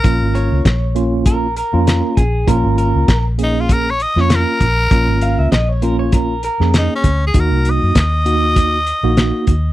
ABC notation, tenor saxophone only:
X:1
M:4/4
L:1/16
Q:"Swing 16ths" 1/4=99
K:Bbm
V:1 name="Tenor saxophone"
B4 z12 | z6 E F B d e d B4- | B4 z8 E D2 A | B2 e2 e12 |]